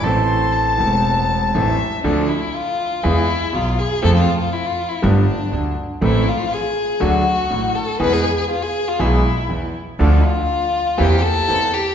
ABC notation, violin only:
X:1
M:4/4
L:1/16
Q:1/4=121
K:Am
V:1 name="Violin"
c'4 a8 e4 | [K:Ddor] D2 E2 F4 E4 F2 ^G2 | A F2 F E F2 E D6 z2 | E2 F2 ^G4 ^F6 A2 |
B ^G2 G F G2 F E6 z2 | D2 F6 G2 A4 G2 |]